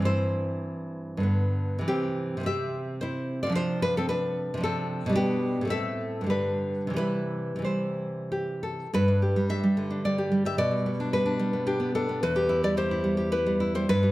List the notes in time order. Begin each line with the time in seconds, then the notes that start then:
Already playing: G2
0.00 E3 C4
0.05 E4 C5
1.17 G2 D3
1.23 B3
1.79 C3 E3
1.88 C4 G4
2.37 C3 E3
2.43 C4 E5
2.47 G4
3.01 E4 C5
3.43 C3 F4 D5
3.49 F3 D4
3.55 F4 C5
3.82 D4 B4
3.97 C4 A4
4.09 D4 B4
4.54 C3 F3
4.61 D4 A4
4.65 C4
5.06 B2 G3
5.12 D4 G4
5.17 B3
5.61 A2 A3
5.67 C4 E5
5.72 A4
6.21 G2 D3
6.26 G3 B4
6.31 D4
6.87 C3 E3
6.93 G3 B4
6.98 E4
7.56 C3 E3
7.62 G3 C5
7.66 E4
8.32 G4
8.63 A4
8.94 G2 B4
9.08 D4
9.22 G4
9.36 G3
9.49 D4 E5
9.63 G3
9.77 D3
9.90 D4
10.05 G3 D5
10.18 G4
10.32 G3
10.45 G4 E5
10.58 B2 D5
10.71 G3
10.86 B3
11.00 D4
11.13 G3 B4
11.26 D4
11.39 G3
11.53 B3
11.67 D4 G4
11.80 B3
11.95 D4 A4
12.09 B3
12.23 E2 B4
12.36 G4
12.49 E4
12.64 G3 D5
12.77 G4 C5
12.91 E4
13.04 G3
13.17 G4
13.32 E4 B4
13.46 G3
13.60 E4
13.75 G3 C5
13.89 G2 B4
14.03 G3